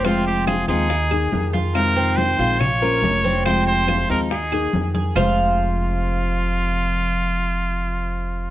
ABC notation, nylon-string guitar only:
X:1
M:4/4
L:1/8
Q:1/4=141
K:Fm
V:1 name="Nylon-string guitar"
[C,F,A,CF]3 [F,A,CF] z [B,EA] [E,B,EA]2 | [C,E,A,CF]3 [E,A,CF] z [B,DFc] [B,F]2 | [C,F,A,CF]3 [F,A,CF] z [B,EA] [E,B,EA]2 | [F,,C,F,A,CF]8- |
[F,,C,F,A,CF]8 |]